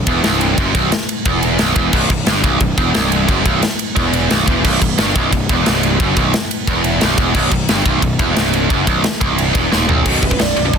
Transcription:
0.07 E1 E2, kick, ride
0.24 C1 C2, snare, ride
0.41 ride
0.58 F#1 F#2, kick, ride
0.75 B0 B1, kick, ride
0.92 snare, ride
1.09 ride
1.25 E1 E2, kick, ride
1.43 ride
1.59 B0 B1, snare, ride
1.75 E1 E2, kick, ride
1.93 B0 B1, kick, crash
2.10 B0 B1, kick, ride
2.26 G1 G2, snare, ride
2.43 B0 B1, kick, ride
2.60 B0 B1, kick, ride
2.77 E1 E2, kick, ride
2.95 C1 C2, snare, ride
3.12 ride
3.28 F#1 F#2, kick, ride
3.45 B0 B1, kick, ride
3.62 snare, ride
3.79 ride
3.96 E1 E2, kick, ride
4.13 ride
4.31 B0 B1, snare, ride
4.47 E1 E2, kick, ride
4.64 B0 B1, kick, crash
4.82 B0 B1, kick, ride
4.98 G1 G2, snare, ride
5.15 B0 B1, kick, ride
5.32 B0 B1, kick, ride
5.49 E1 E2, kick, ride
5.66 C1 C2, snare, ride
5.83 ride
6.00 F#1 F#2, kick, ride
6.16 B0 B1, kick, ride
6.34 snare, ride
6.51 ride
6.67 E1 E2, kick, ride
6.84 ride
7.01 B0 B1, snare, ride
7.18 E1 E2, kick, ride
7.35 B0 B1, kick, crash
7.52 B0 B1, kick, ride
7.69 G1 G2, snare, ride
7.85 B0 B1, kick, ride
8.02 B0 B1, kick, ride
8.19 E1 E2, kick, ride
8.35 C1 C2, snare, ride
8.53 ride
8.70 F#1 F#2, kick, ride
8.87 B0 B1, kick, ride
9.04 snare, ride
9.21 C1 C2, kick, ride
9.38 ride
9.54 E1 E2, kick, ride
9.71 D#1 D#2, snare
9.88 B0 B1, floor tom
10.06 B0 B1 F#2 B2, kick, crash
10.22 B0 B1 F#2 B4, kick, crash
10.31 B1 F#2, kick
10.39 B0 B1 F#2 D5, snare, crash
10.56 B0 B1 F#2, crash
10.65 B1 F#2
10.73 B0 B1 F#2 A5, kick, crash

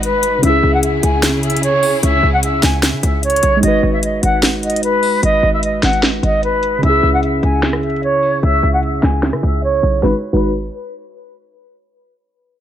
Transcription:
Already playing: G#1 G#3 D#4 F#4 B4
0.03 B4, closed hi-hat
0.23 closed hi-hat
0.39 C#3 C#4
0.43 C#2 C#3 C#4 E4 G#4 E5, closed hi-hat
0.50 G#4
0.63 C#2
0.73 F#5
0.83 E5, closed hi-hat
1.03 C#2 G#5, closed hi-hat
1.23 snare, closed hi-hat
1.43 E5, closed hi-hat
1.50 closed hi-hat
1.57 closed hi-hat
1.63 C#5, closed hi-hat
1.83 open hi-hat
2.03 C#2 E5, closed hi-hat
2.23 C#2
2.33 F#5
2.43 E5, closed hi-hat
2.63 C#2 G#5, snare, closed hi-hat
2.83 snare, closed hi-hat
2.93 C#3
3.03 C#2 E5, closed hi-hat
3.23 C#5, closed hi-hat
3.30 closed hi-hat
3.36 closed hi-hat
3.43 B1, closed hi-hat
3.57 G#3 D#4
3.62 G#1 F#4 D#5, closed hi-hat
3.68 B4
3.83 G#1
3.93 E5
4.03 D#5, closed hi-hat
4.23 G#1 F#5, closed hi-hat
4.43 snare, closed hi-hat
4.63 D#5, closed hi-hat
4.70 closed hi-hat
4.76 closed hi-hat
4.83 B4, closed hi-hat
5.03 open hi-hat
5.23 G#1 D#5, closed hi-hat
5.43 G#1
5.53 E5
5.63 D#5, closed hi-hat
5.83 G#1 F#5, snare, closed hi-hat, open hi-hat
5.93 closed hi-hat
6.03 snare, closed hi-hat
6.23 G#1 D#5, closed hi-hat
6.43 B4, closed hi-hat
6.63 closed hi-hat
6.78 C#3 C#4
6.83 C#2 E4 E5, closed hi-hat
6.89 G#4
7.03 C#2
7.13 F#5
7.23 E5, closed hi-hat
7.43 C#2 G#5, closed hi-hat
7.63 snare, closed hi-hat
7.73 cross-stick
7.83 E5, closed hi-hat
7.90 closed hi-hat
7.96 closed hi-hat
8.03 C#5, closed hi-hat
8.23 open hi-hat
8.42 C#2 E5, closed hi-hat
8.63 C#2
8.73 F#5
8.83 E5, closed hi-hat
9.03 C#2 G#5, snare, closed hi-hat
9.23 snare, closed hi-hat
9.33 C#3, cross-stick
9.43 C#2 E5, closed hi-hat
9.63 C#5, closed hi-hat
9.70 closed hi-hat
9.76 closed hi-hat
9.83 B1, closed hi-hat
10.03 G#1 G#3 D#4 F#4 B4, snare
10.33 G#1 G#3 D#4 F#4 B4, crash

